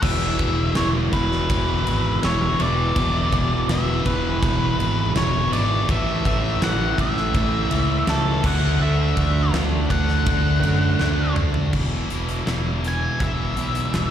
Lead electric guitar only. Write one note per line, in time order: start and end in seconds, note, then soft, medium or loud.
0.02 0.72 E5 loud
0.76 0.86 C#5 loud
1.13 2.19 B4 loud
2.25 2.62 C#5 loud
2.61 3.69 D5 loud
3.70 4.03 E5 loud
4.06 5.12 B4 loud
5.17 5.52 C#5 loud
5.53 5.86 D5 medium
5.91 6.26 E5 loud
6.27 6.63 E5 medium
6.64 6.97 F#5 loud
7.01 8.12 E5 loud
8.10 8.46 A4 medium
8.46 8.82 F#5 loud
8.82 9.51 E5 medium
9.91 11.34 F#5 loud
12.88 13.24 G#5 medium
13.23 14.11 E5 medium